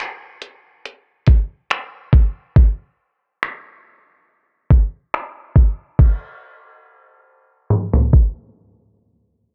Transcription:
0, 0, Header, 1, 2, 480
1, 0, Start_track
1, 0, Tempo, 857143
1, 1434, Time_signature, 4, 2, 24, 8
1, 5347, End_track
2, 0, Start_track
2, 0, Title_t, "Drums"
2, 0, Note_on_c, 9, 26, 101
2, 55, Note_off_c, 9, 26, 0
2, 233, Note_on_c, 9, 42, 66
2, 289, Note_off_c, 9, 42, 0
2, 479, Note_on_c, 9, 42, 70
2, 535, Note_off_c, 9, 42, 0
2, 709, Note_on_c, 9, 42, 70
2, 714, Note_on_c, 9, 36, 87
2, 765, Note_off_c, 9, 42, 0
2, 770, Note_off_c, 9, 36, 0
2, 954, Note_on_c, 9, 42, 59
2, 958, Note_on_c, 9, 26, 106
2, 1010, Note_off_c, 9, 42, 0
2, 1014, Note_off_c, 9, 26, 0
2, 1192, Note_on_c, 9, 36, 90
2, 1248, Note_off_c, 9, 36, 0
2, 1434, Note_on_c, 9, 36, 114
2, 1490, Note_off_c, 9, 36, 0
2, 1920, Note_on_c, 9, 26, 96
2, 1976, Note_off_c, 9, 26, 0
2, 2635, Note_on_c, 9, 36, 84
2, 2691, Note_off_c, 9, 36, 0
2, 2879, Note_on_c, 9, 26, 108
2, 2935, Note_off_c, 9, 26, 0
2, 3112, Note_on_c, 9, 36, 91
2, 3168, Note_off_c, 9, 36, 0
2, 3355, Note_on_c, 9, 36, 93
2, 3355, Note_on_c, 9, 49, 75
2, 3411, Note_off_c, 9, 36, 0
2, 3411, Note_off_c, 9, 49, 0
2, 4314, Note_on_c, 9, 47, 59
2, 4370, Note_off_c, 9, 47, 0
2, 4444, Note_on_c, 9, 43, 71
2, 4500, Note_off_c, 9, 43, 0
2, 4554, Note_on_c, 9, 36, 79
2, 4610, Note_off_c, 9, 36, 0
2, 5347, End_track
0, 0, End_of_file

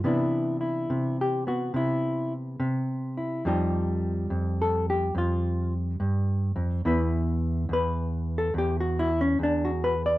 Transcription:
0, 0, Header, 1, 2, 480
1, 0, Start_track
1, 0, Tempo, 849858
1, 26, Time_signature, 4, 2, 24, 8
1, 5751, End_track
2, 0, Start_track
2, 0, Title_t, "Hollow-body jazz guitar"
2, 0, Program_c, 0, 26
2, 22, Note_on_c, 0, 48, 68
2, 27, Note_on_c, 0, 52, 52
2, 27, Note_on_c, 0, 59, 51
2, 34, Note_on_c, 0, 62, 50
2, 37, Note_on_c, 0, 64, 53
2, 336, Note_off_c, 0, 64, 0
2, 343, Note_on_c, 0, 64, 45
2, 501, Note_off_c, 0, 48, 0
2, 508, Note_on_c, 0, 48, 63
2, 665, Note_off_c, 0, 64, 0
2, 685, Note_on_c, 0, 67, 74
2, 823, Note_off_c, 0, 59, 0
2, 830, Note_on_c, 0, 59, 43
2, 833, Note_off_c, 0, 67, 0
2, 836, Note_on_c, 0, 66, 67
2, 975, Note_off_c, 0, 48, 0
2, 982, Note_on_c, 0, 48, 66
2, 992, Note_off_c, 0, 66, 0
2, 996, Note_on_c, 0, 64, 67
2, 1313, Note_off_c, 0, 64, 0
2, 1460, Note_off_c, 0, 48, 0
2, 1466, Note_on_c, 0, 48, 69
2, 1793, Note_on_c, 0, 64, 44
2, 1928, Note_off_c, 0, 48, 0
2, 1929, Note_off_c, 0, 52, 0
2, 1930, Note_off_c, 0, 59, 0
2, 1933, Note_off_c, 0, 62, 0
2, 1949, Note_on_c, 0, 41, 74
2, 1951, Note_off_c, 0, 64, 0
2, 1956, Note_on_c, 0, 53, 58
2, 1958, Note_on_c, 0, 55, 54
2, 1960, Note_on_c, 0, 63, 57
2, 1966, Note_on_c, 0, 67, 53
2, 2423, Note_off_c, 0, 41, 0
2, 2430, Note_on_c, 0, 41, 63
2, 2605, Note_off_c, 0, 67, 0
2, 2607, Note_on_c, 0, 69, 78
2, 2758, Note_off_c, 0, 69, 0
2, 2767, Note_on_c, 0, 67, 80
2, 2901, Note_off_c, 0, 41, 0
2, 2907, Note_on_c, 0, 41, 75
2, 2917, Note_off_c, 0, 67, 0
2, 2926, Note_on_c, 0, 65, 71
2, 3237, Note_off_c, 0, 65, 0
2, 3386, Note_off_c, 0, 41, 0
2, 3388, Note_on_c, 0, 43, 68
2, 3701, Note_off_c, 0, 43, 0
2, 3704, Note_on_c, 0, 41, 69
2, 3852, Note_off_c, 0, 53, 0
2, 3853, Note_off_c, 0, 63, 0
2, 3865, Note_off_c, 0, 41, 0
2, 3869, Note_on_c, 0, 40, 85
2, 3872, Note_off_c, 0, 55, 0
2, 3872, Note_on_c, 0, 59, 58
2, 3876, Note_on_c, 0, 64, 51
2, 3882, Note_on_c, 0, 71, 57
2, 4336, Note_off_c, 0, 40, 0
2, 4343, Note_on_c, 0, 40, 67
2, 4354, Note_off_c, 0, 71, 0
2, 4367, Note_on_c, 0, 71, 86
2, 4733, Note_on_c, 0, 69, 75
2, 4756, Note_off_c, 0, 71, 0
2, 4817, Note_off_c, 0, 40, 0
2, 4819, Note_off_c, 0, 69, 0
2, 4824, Note_on_c, 0, 40, 65
2, 4848, Note_on_c, 0, 67, 75
2, 4971, Note_off_c, 0, 67, 0
2, 4973, Note_on_c, 0, 66, 68
2, 5073, Note_off_c, 0, 64, 0
2, 5080, Note_on_c, 0, 64, 85
2, 5139, Note_off_c, 0, 66, 0
2, 5192, Note_off_c, 0, 64, 0
2, 5201, Note_on_c, 0, 61, 77
2, 5293, Note_off_c, 0, 61, 0
2, 5297, Note_off_c, 0, 40, 0
2, 5304, Note_on_c, 0, 40, 70
2, 5328, Note_on_c, 0, 62, 84
2, 5449, Note_on_c, 0, 66, 69
2, 5477, Note_off_c, 0, 62, 0
2, 5558, Note_on_c, 0, 71, 94
2, 5617, Note_off_c, 0, 66, 0
2, 5671, Note_off_c, 0, 71, 0
2, 5681, Note_on_c, 0, 74, 92
2, 5751, Note_off_c, 0, 40, 0
2, 5751, Note_off_c, 0, 59, 0
2, 5751, Note_off_c, 0, 74, 0
2, 5751, End_track
0, 0, End_of_file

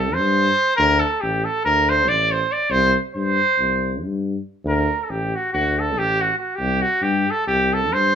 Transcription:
0, 0, Header, 1, 3, 480
1, 0, Start_track
1, 0, Tempo, 500000
1, 7824, End_track
2, 0, Start_track
2, 0, Title_t, "Trumpet"
2, 0, Program_c, 0, 56
2, 0, Note_on_c, 0, 69, 103
2, 131, Note_on_c, 0, 72, 127
2, 145, Note_off_c, 0, 69, 0
2, 722, Note_off_c, 0, 72, 0
2, 728, Note_on_c, 0, 70, 126
2, 956, Note_on_c, 0, 69, 105
2, 970, Note_off_c, 0, 70, 0
2, 1162, Note_on_c, 0, 67, 96
2, 1176, Note_off_c, 0, 69, 0
2, 1388, Note_on_c, 0, 69, 106
2, 1403, Note_off_c, 0, 67, 0
2, 1574, Note_off_c, 0, 69, 0
2, 1580, Note_on_c, 0, 70, 122
2, 1819, Note_on_c, 0, 72, 113
2, 1833, Note_off_c, 0, 70, 0
2, 2002, Note_on_c, 0, 74, 124
2, 2017, Note_off_c, 0, 72, 0
2, 2221, Note_on_c, 0, 72, 105
2, 2236, Note_off_c, 0, 74, 0
2, 2420, Note_on_c, 0, 74, 102
2, 2435, Note_off_c, 0, 72, 0
2, 2599, Note_on_c, 0, 72, 118
2, 2613, Note_off_c, 0, 74, 0
2, 2837, Note_off_c, 0, 72, 0
2, 3023, Note_on_c, 0, 72, 112
2, 3840, Note_off_c, 0, 72, 0
2, 4493, Note_on_c, 0, 70, 94
2, 4834, Note_on_c, 0, 69, 68
2, 4848, Note_off_c, 0, 70, 0
2, 4895, Note_on_c, 0, 67, 82
2, 4910, Note_off_c, 0, 69, 0
2, 5139, Note_on_c, 0, 66, 86
2, 5153, Note_off_c, 0, 67, 0
2, 5303, Note_off_c, 0, 66, 0
2, 5309, Note_on_c, 0, 66, 107
2, 5562, Note_on_c, 0, 69, 97
2, 5576, Note_off_c, 0, 66, 0
2, 5742, Note_on_c, 0, 67, 110
2, 5756, Note_off_c, 0, 69, 0
2, 5960, Note_on_c, 0, 66, 94
2, 5975, Note_off_c, 0, 67, 0
2, 6125, Note_off_c, 0, 66, 0
2, 6131, Note_on_c, 0, 66, 82
2, 6290, Note_on_c, 0, 67, 107
2, 6305, Note_off_c, 0, 66, 0
2, 6544, Note_on_c, 0, 66, 97
2, 6559, Note_off_c, 0, 67, 0
2, 6743, Note_on_c, 0, 67, 93
2, 6757, Note_off_c, 0, 66, 0
2, 7013, Note_on_c, 0, 69, 102
2, 7028, Note_off_c, 0, 67, 0
2, 7164, Note_off_c, 0, 69, 0
2, 7170, Note_on_c, 0, 67, 109
2, 7426, Note_on_c, 0, 69, 111
2, 7440, Note_off_c, 0, 67, 0
2, 7610, Note_on_c, 0, 72, 127
2, 7625, Note_off_c, 0, 69, 0
2, 7824, Note_off_c, 0, 72, 0
2, 7824, End_track
3, 0, Start_track
3, 0, Title_t, "Tuba"
3, 0, Program_c, 1, 58
3, 0, Note_on_c, 1, 36, 97
3, 168, Note_on_c, 1, 43, 104
3, 182, Note_off_c, 1, 36, 0
3, 485, Note_off_c, 1, 43, 0
3, 751, Note_on_c, 1, 38, 126
3, 983, Note_off_c, 1, 38, 0
3, 1174, Note_on_c, 1, 33, 95
3, 1407, Note_off_c, 1, 33, 0
3, 1584, Note_on_c, 1, 38, 104
3, 2014, Note_on_c, 1, 33, 92
3, 2029, Note_off_c, 1, 38, 0
3, 2337, Note_off_c, 1, 33, 0
3, 2592, Note_on_c, 1, 36, 119
3, 2830, Note_off_c, 1, 36, 0
3, 3023, Note_on_c, 1, 43, 90
3, 3260, Note_off_c, 1, 43, 0
3, 3442, Note_on_c, 1, 36, 88
3, 3877, Note_on_c, 1, 43, 92
3, 3891, Note_off_c, 1, 36, 0
3, 4198, Note_off_c, 1, 43, 0
3, 4459, Note_on_c, 1, 38, 127
3, 4694, Note_off_c, 1, 38, 0
3, 4886, Note_on_c, 1, 33, 93
3, 5120, Note_off_c, 1, 33, 0
3, 5315, Note_on_c, 1, 38, 102
3, 5740, Note_on_c, 1, 33, 90
3, 5754, Note_off_c, 1, 38, 0
3, 6059, Note_off_c, 1, 33, 0
3, 6327, Note_on_c, 1, 36, 106
3, 6559, Note_off_c, 1, 36, 0
3, 6736, Note_on_c, 1, 43, 101
3, 6972, Note_off_c, 1, 43, 0
3, 7176, Note_on_c, 1, 36, 102
3, 7607, Note_on_c, 1, 43, 94
3, 7621, Note_off_c, 1, 36, 0
3, 7824, Note_off_c, 1, 43, 0
3, 7824, End_track
0, 0, End_of_file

